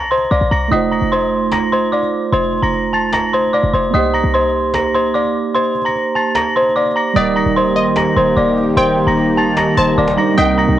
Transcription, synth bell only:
0.11 C5 C6
0.31 D5 D6
0.51 A#5 A#6
0.71 D#5 D#6
0.91 A#5 A#6
1.12 C5 C6
1.52 A#5 A#6
1.72 C5 C6
1.92 D5 D6
2.33 C5 C6
2.63 A#5 A#6
2.93 A5 A6
3.13 A#5 A#6
3.33 C5 C6
3.53 D5 D6
3.74 C5 C6
3.94 D#5 D#6
4.14 A#5 A#6
4.34 C5 C6
4.74 A#5 A#6
4.94 C5 C6
5.14 D5 D6
5.55 C5 C6
5.85 A#5 A#6
6.15 A5 A6
6.35 A#5 A#6
6.56 C5 C6
6.76 D5 D6
6.96 A#5 A#6
7.16 D#5 D#6
7.36 A#5 A#6
7.56 C5 C6
7.97 A#5 A#6
8.16 C5 C6
8.37 D5 D6
8.77 C5 C6
9.07 A#5 A#6
9.37 A5 A6
9.57 A#5 A#6
9.77 C5 C6
9.98 D5 D6
10.18 A#5 A#6
10.38 D#5 D#6
10.58 A#5 A#6

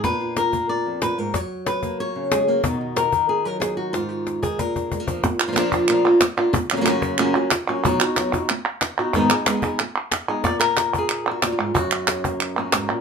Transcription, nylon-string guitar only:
0.04 A#2 D4 F4 B4
0.21 F4
0.38 A#4
0.52 A#3 F4
0.69 D5
0.86 F2
1.02 A#2 B4
1.18 G#2 A#4
1.34 F#3 C#5
1.67 B4
1.83 A#3
2.00 C#5
2.16 C#3
2.32 G#3 G#4
2.48 A#3 F#4
2.65 B2 D#3 D#4
2.81 D#4
2.96 A#4
3.14 D#3
3.29 G#4
3.45 F#3 A#4
3.60 G#4
3.77 F#4
3.93 G#2 F4
4.09 F#4
4.42 D#3 G#4
4.59 A#2 A#4
4.77 D4
4.92 G#3
5.00 A#3
5.08 F3 D4
5.24 muted nylon-string guitar stroke
5.48 F3 A#3 D4 F4
5.52 F3 A#3 D4 F4
5.56 A#2 F3 A#3 D4 F4
5.89 A#2 F3 A#3 D4 F4
6.05 A#3 D4 F4
6.21 muted nylon-string guitar stroke
6.37 A#3 D4 F4
6.53 muted nylon-string guitar stroke
6.72 C#3 F#3 A#3 C#4 F#4
6.77 C#3 F#3 A#3 C#4 F#4
6.81 C#3 F#3 A#3 C#4 F#4
6.86 F#2 C#3 F#3 A#3 C#4 F#4
7.18 F#2 C#3 F#3 A#3 C#4 F#4
7.35 F#3 A#3 C#4 F#4
7.52 muted nylon-string guitar stroke
7.68 F#3 A#3 C#4 F#4
7.84 B2 F#3 B3 D#4 F#4
8.01 B3 D#4 F#4
8.17 F#3 B3 D#4 F#4
8.34 B3 D#4 F#4
8.50 muted nylon-string guitar stroke
8.99 B3 D#4 F#4
9.15 G#2 D#3 G#3 B3 D#4 G#4
9.31 G#3 B3 D#4 G#4
9.48 G#3 B3 D#4 G#4
9.63 G#3 B3 D#4 G#4
9.80 muted nylon-string guitar stroke
10.28 G#3 B3 D#4 G#4
10.44 A#2 D5
10.60 A#4
10.98 G#4
11.27 D4
11.31 F#4
11.43 A#2
11.52 F4
11.59 G#2
11.74 F#2 F#4
11.92 C#4
12.25 A#3
12.57 A#3 C#4 F#4
12.73 G#2
12.89 A#2

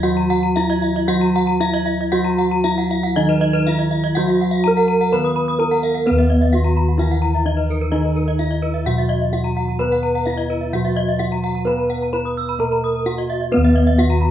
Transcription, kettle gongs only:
Already playing: D#2
0.04 F#4
0.56 E4
1.09 F#3
1.60 E4
2.13 F#4
3.16 F#3
3.66 E4
4.17 F#4
4.66 E4
5.13 D#3
5.60 E4
6.06 B4
6.11 D#2
6.53 E4
7.46 E4
7.93 D#4
8.40 E4
8.86 B2
9.32 E4
9.79 B4
10.27 E4
10.73 B2
11.20 E4
11.67 B4
12.13 E4
12.59 B2
13.06 E4
13.52 B4
13.57 D#2
13.98 E4

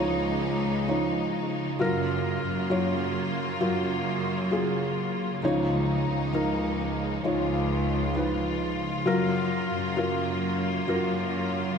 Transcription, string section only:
Already playing: C#3 F3 G#3 D#4
1.79 F#3 A#3 F4
5.43 F3 G#3 D#4
7.24 F4
9.06 F#3 A#3

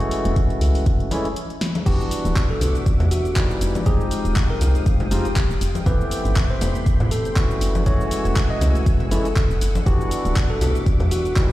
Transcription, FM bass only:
Already playing: F#1
0.25 E1
0.61 C#2
0.86 B1
1.86 E1
2.25 D1
2.61 B1
3.00 E2
3.61 F1
4.25 D#1
4.61 C2
5.11 F1
5.50 D#1
5.61 F1
5.86 A1
6.25 G1
6.61 E1
7.00 A2
7.61 F#1
8.25 E1
8.61 C#2
9.11 F#1
9.50 E1
9.61 F#1
9.86 E1
10.25 D1
10.61 B1
11.00 E2

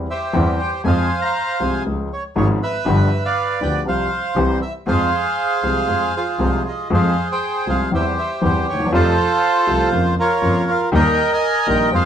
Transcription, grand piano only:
0.33 E2 E3 G3 C4 G4
0.84 F2 F3 G#3 C4 G#4
1.60 C2 C3 F3 G#3 C4 G#4
1.86 C#2 C#3 F3 G#3 C#4 G#4
2.35 G#1 G#2 F3 G#3 C#4 G#4
2.85 G1 G2 F3 B3 D4 G4
3.61 D2 D3 F3 B3 D4 G4
3.85 C2 C3 F3 G3 C4 G4
4.36 C2 C3 E3 G3 C4 G4
4.86 F2 F3 G#3 C4 G#4
5.63 C2 C3 F3 G#3 C4 G#4
5.88 F2 F3 G#3 C4 G#4
6.39 C2 C3 F3 G#3 C4 G#4
6.90 F2 F3 G#3 C4 G#4
7.67 C2 C3 F3 G#3 C4 G#4
7.91 E2 E3 G3 C4 G4
8.41 E2 E3 G3 C4 G4
8.73 D2
8.80 D#2
8.86 E2
8.92 F2 C3 F3 A3 F4
9.67 C2 C3 F3 A3 F4
9.92 F2 C#3 F3 A#3 F4
10.42 F2 C#3 F3 A#3 F4
10.92 D#2 D#3 G3 A#3 G4
11.67 A#1 A#2 D#3 G3 A#3 G4
11.91 F2 F3 G#3 C4 G#4

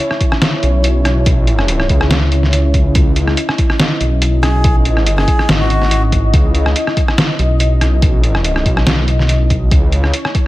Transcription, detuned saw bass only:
0.63 B1
1.90 C#2
2.53 C#2
2.95 C#2
4.01 B1
5.49 G#1
6.33 C#2
7.39 B1
8.66 B1
9.71 C#2

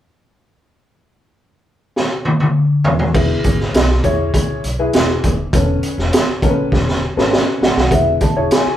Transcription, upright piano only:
3.15 E4 G#4 B4
4.05 E4 G#4 C#5
4.79 E4 G#4 B4
5.54 C#4 A4 B4
6.43 C#4 A4 A#4
6.49 B4
7.17 C#4 A4 B4
7.92 E4 G#4 B4
8.36 E4 G#4 C#5

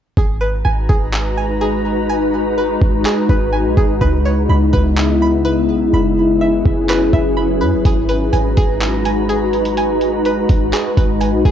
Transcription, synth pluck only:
0.18 G#4
0.41 B4
0.65 G#5
0.89 G#4
1.37 G#5
1.61 G#4
2.09 G#5
2.58 B4
3.05 G#4
3.29 B4
3.53 G#5
3.77 G#4
4.01 B4
4.25 C#5
4.49 B5
4.73 B4
5.22 B5
5.45 B4
5.94 B5
6.41 E5
6.89 B4
7.13 E5
7.37 B5
7.61 B4
7.86 G#4
8.09 B4
8.33 G#5
8.57 G#4
9.05 G#5
9.29 G#4
9.77 G#5
10.26 B4
10.73 G#4
10.97 B4
11.21 G#5
11.45 G#4

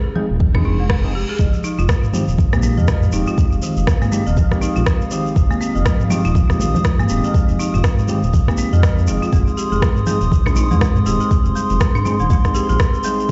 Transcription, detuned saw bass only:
0.30 D#1
0.55 F2
0.65 F1
1.39 F1
1.78 F1
2.28 D#1
2.53 A#1
2.78 F2
3.13 D#1
3.52 F1
3.77 F1
4.27 D#1
4.76 A#1
5.36 F1
5.75 F1
6.25 D#1
6.50 A#1
6.75 F2
7.10 D#1
7.49 F1
7.74 F1
8.23 D#1
8.73 F2
9.08 F1
9.33 F1
9.72 F1
10.21 D#1
10.46 A#1
10.71 F2
11.06 D#1
11.46 F1
11.70 F1
12.20 D#1
12.70 A#1

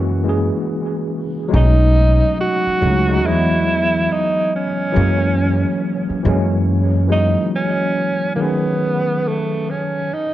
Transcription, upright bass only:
Already playing: F#2
1.54 B1
2.67 muted upright bass stroke
2.82 C#2
3.25 E2
4.96 F#2
6.10 muted upright bass stroke
6.25 F#2

